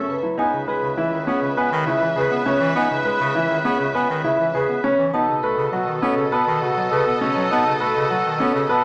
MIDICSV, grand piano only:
0, 0, Header, 1, 2, 480
1, 0, Start_track
1, 0, Tempo, 594059
1, 305, Time_signature, 4, 2, 24, 8
1, 7144, End_track
2, 0, Start_track
2, 0, Title_t, "Grand piano"
2, 0, Program_c, 0, 0
2, 0, Note_on_c, 0, 61, 67
2, 102, Note_off_c, 0, 61, 0
2, 185, Note_on_c, 0, 64, 60
2, 304, Note_on_c, 0, 63, 82
2, 341, Note_off_c, 0, 64, 0
2, 461, Note_off_c, 0, 63, 0
2, 547, Note_on_c, 0, 71, 85
2, 702, Note_off_c, 0, 71, 0
2, 787, Note_on_c, 0, 64, 79
2, 942, Note_off_c, 0, 64, 0
2, 1027, Note_on_c, 0, 61, 77
2, 1182, Note_off_c, 0, 61, 0
2, 1270, Note_on_c, 0, 71, 90
2, 1423, Note_off_c, 0, 71, 0
2, 1509, Note_on_c, 0, 64, 74
2, 1663, Note_off_c, 0, 64, 0
2, 1746, Note_on_c, 0, 68, 78
2, 1902, Note_off_c, 0, 68, 0
2, 1986, Note_on_c, 0, 61, 91
2, 2142, Note_off_c, 0, 61, 0
2, 2227, Note_on_c, 0, 63, 86
2, 2382, Note_off_c, 0, 63, 0
2, 2466, Note_on_c, 0, 71, 87
2, 2622, Note_off_c, 0, 71, 0
2, 2707, Note_on_c, 0, 64, 78
2, 2862, Note_off_c, 0, 64, 0
2, 2948, Note_on_c, 0, 61, 75
2, 3102, Note_off_c, 0, 61, 0
2, 3188, Note_on_c, 0, 71, 93
2, 3343, Note_off_c, 0, 71, 0
2, 3427, Note_on_c, 0, 64, 75
2, 3582, Note_off_c, 0, 64, 0
2, 3672, Note_on_c, 0, 68, 84
2, 3824, Note_off_c, 0, 68, 0
2, 3909, Note_on_c, 0, 61, 96
2, 4063, Note_off_c, 0, 61, 0
2, 4151, Note_on_c, 0, 63, 80
2, 4304, Note_off_c, 0, 63, 0
2, 4391, Note_on_c, 0, 71, 89
2, 4543, Note_off_c, 0, 71, 0
2, 4629, Note_on_c, 0, 66, 78
2, 4783, Note_off_c, 0, 66, 0
2, 4869, Note_on_c, 0, 61, 84
2, 5023, Note_off_c, 0, 61, 0
2, 5108, Note_on_c, 0, 71, 102
2, 5262, Note_off_c, 0, 71, 0
2, 5348, Note_on_c, 0, 66, 74
2, 5502, Note_off_c, 0, 66, 0
2, 5587, Note_on_c, 0, 69, 80
2, 5742, Note_off_c, 0, 69, 0
2, 5826, Note_on_c, 0, 61, 90
2, 5982, Note_off_c, 0, 61, 0
2, 6064, Note_on_c, 0, 63, 85
2, 6221, Note_off_c, 0, 63, 0
2, 6305, Note_on_c, 0, 71, 96
2, 6461, Note_off_c, 0, 71, 0
2, 6547, Note_on_c, 0, 66, 78
2, 6702, Note_off_c, 0, 66, 0
2, 6786, Note_on_c, 0, 61, 87
2, 6941, Note_off_c, 0, 61, 0
2, 7024, Note_on_c, 0, 71, 107
2, 7144, Note_off_c, 0, 71, 0
2, 7144, End_track
0, 0, End_of_file